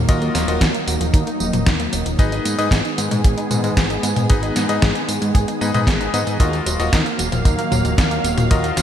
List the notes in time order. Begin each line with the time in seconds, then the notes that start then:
Already playing: D#3 F#3 A#3
0.08 D#2 D#4 F4 F#4 A#4 D#5, kick, closed hi-hat, tambourine
0.22 A#3, closed hi-hat, tambourine
0.35 D#1 F#3, snare, closed hi-hat, tambourine
0.48 D#1 F3 F4 F#4 A#4 D#5, closed hi-hat, tambourine
0.61 D#2 D#4, kick, snare, closed hi-hat, tambourine
0.74 A#3, closed hi-hat, tambourine
0.87 D#1 F#3, closed hi-hat, tambourine
1.01 D#1 F3, closed hi-hat, tambourine
1.14 D#2 D#4, kick, closed hi-hat, tambourine
1.27 A#3, closed hi-hat, tambourine
1.40 D#1 F#3, tambourine
1.53 D#1 F3, closed hi-hat, high tom, tambourine
1.67 D#2 D#4, kick, snare, closed hi-hat, tambourine
1.80 A#3, closed hi-hat, tambourine
1.93 D#1 F#3, closed hi-hat, tambourine
2.06 D#1 F3, closed hi-hat, tambourine
2.19 G#1 G#3 B3 D#4 G#4 B4 D#5, kick, closed hi-hat, tambourine
2.32 D#4, closed hi-hat, tambourine
2.45 G#2 B3, closed hi-hat, tambourine
2.58 G#2 G#3 D#4 G#4 B4 D#5, closed hi-hat, tambourine
2.71 G#1 G#4, kick, snare, closed hi-hat, tambourine
2.85 D#4, closed hi-hat, tambourine
2.98 G#2 B3, closed hi-hat, tambourine
3.11 G#2 G#3, closed hi-hat, high tom, tambourine
3.24 G#1 G#4, kick, closed hi-hat, tambourine
3.38 D#4, closed hi-hat, tambourine
3.51 G#2 B3, high tom, tambourine
3.64 G#2 G#3, closed hi-hat, tambourine
3.77 G#1 G#4, kick, snare, closed hi-hat, tambourine
3.90 D#4, closed hi-hat, tambourine
4.03 G#2 B3, closed hi-hat, tambourine
4.16 G#2 G#3, closed hi-hat, high tom, tambourine
4.30 G#1 D#4 G#4 B4 D#5, kick, closed hi-hat, tambourine
4.43 D#4, closed hi-hat, tambourine
4.56 G#2 B3, snare, closed hi-hat, tambourine
4.69 G#2 G#3 D#4 G#4 B4 D#5, closed hi-hat, tambourine
4.82 G#1 G#4, kick, snare, closed hi-hat, tambourine
4.95 D#4, closed hi-hat, tambourine
5.09 G#2 B3, closed hi-hat, tambourine
5.22 G#2 G#3, closed hi-hat, tambourine
5.35 G#1 G#4, kick, closed hi-hat, tambourine
5.48 D#4, closed hi-hat, tambourine
5.61 G#2 B3 D#4 G#4 B4 D#5, tambourine
5.74 G#2 G#3 D#4 G#4 B4 D#5, closed hi-hat, high tom, tambourine
5.87 G#1 G#4, kick, snare, closed hi-hat, tambourine
6.01 D#4, closed hi-hat, tambourine
6.14 G#2 B3 D#4 G#4 B4 D#5, closed hi-hat, tambourine
6.27 G#2 G#3, closed hi-hat, tambourine
6.40 D#2 D#3 F#3 A#3 D#4 F4 F#4 A#4 D#5 F5, kick, closed hi-hat, tambourine
6.53 A#3, closed hi-hat, tambourine
6.66 D#1 F#3, closed hi-hat, tambourine
6.79 D#1 F3 F4 F#4 A#4 D#5, closed hi-hat, tambourine
6.93 D#2 D#4, kick, snare, closed hi-hat, tambourine
7.06 A#3, closed hi-hat, tambourine
7.19 D#1 F#3, closed hi-hat, tambourine
7.32 D#1 F3, closed hi-hat, high tom, tambourine
7.45 D#2 D#4, kick, closed hi-hat, tambourine
7.58 A#3, closed hi-hat, tambourine
7.71 D#1 F#3, high tom, tambourine
7.85 D#1 F3, closed hi-hat, tambourine
7.98 D#2 D#4, kick, snare, closed hi-hat, tambourine
8.11 A#3, closed hi-hat, tambourine
8.24 D#1 F#3, closed hi-hat, tambourine
8.37 D#1 F3, closed hi-hat, high tom, tambourine
8.51 D#2 G#3 D#4 F4 F#4 A#4 D#5, kick, closed hi-hat, tambourine
8.64 A#3, closed hi-hat, tambourine
8.77 D#1 F#3, snare, closed hi-hat, tambourine